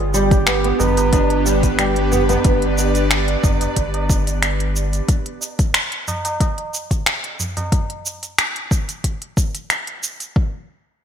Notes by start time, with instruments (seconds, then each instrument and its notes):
Already playing: sub bass G1, analog synth pad B3 F4
0.00 analog synth pad D4
0.07 analog synth pad G4
0.13 nylon-string guitar G3, duduk G4, tabla tin, shaker
0.31 kick, closed hi-hat, shaker
0.47 nylon-string guitar B3, finger snap, closed hi-hat, shaker
0.64 nylon-string guitar B3, closed hi-hat
0.80 sub bass G1, duduk B4, tabla na, tabla ge, shaker
0.96 analog synth pad B4, closed hi-hat, tabla na, tabla tin, shaker
1.13 nylon-string guitar D4, kick, closed hi-hat, tabla na, shaker
1.30 closed hi-hat, tabla tin
1.46 nylon-string guitar G3, shaker
1.63 kick, closed hi-hat, shaker
1.79 nylon-string guitar G3, duduk G4, finger snap, closed hi-hat, shaker
1.96 closed hi-hat, tabla tin
2.12 nylon-string guitar B3, tabla ge, shaker
2.19 analog synth pad D5
2.29 nylon-string guitar B3, closed hi-hat, tabla na, tabla ge, shaker
2.44 sub bass G1, kick, closed hi-hat, shaker
2.62 closed hi-hat
2.78 tabla tin, shaker
2.95 closed hi-hat, shaker
3.11 finger snap, closed hi-hat, shaker
3.28 closed hi-hat
3.43 sub bass G1, kick, tabla na, tabla ge, shaker
3.61 closed hi-hat, tabla na, tabla tin, shaker
3.76 sub bass G1, kick, closed hi-hat, shaker
3.94 closed hi-hat, tabla na
4.10 kick, shaker
4.27 closed hi-hat, shaker
4.43 finger snap, closed hi-hat, shaker
4.60 closed hi-hat
4.76 shaker
4.93 closed hi-hat, shaker
5.09 kick, closed hi-hat, shaker
5.26 closed hi-hat
5.41 tabla tin, shaker
5.59 kick, closed hi-hat, shaker
5.74 finger snap, closed hi-hat, shaker
5.92 closed hi-hat
6.08 tabla na, tabla ge, shaker
6.25 closed hi-hat, tabla na, tabla tin, shaker
6.40 kick, closed hi-hat, tabla na, shaker
6.58 closed hi-hat, tabla tin
6.74 shaker
6.91 kick, closed hi-hat, shaker
7.06 finger snap, closed hi-hat, shaker
7.24 closed hi-hat, tabla tin
7.40 tabla ge, shaker
7.57 closed hi-hat, tabla na, tabla ge, shaker
7.72 kick, closed hi-hat, shaker
7.90 closed hi-hat
8.06 shaker
8.23 closed hi-hat, shaker
8.38 finger snap, closed hi-hat, shaker
8.56 closed hi-hat
8.71 kick, shaker
8.89 closed hi-hat, shaker
9.04 kick, closed hi-hat, shaker
9.22 closed hi-hat
9.37 kick, shaker
9.55 closed hi-hat, shaker
9.70 finger snap, closed hi-hat, shaker
9.87 closed hi-hat
10.03 shaker
10.20 closed hi-hat, shaker
10.36 kick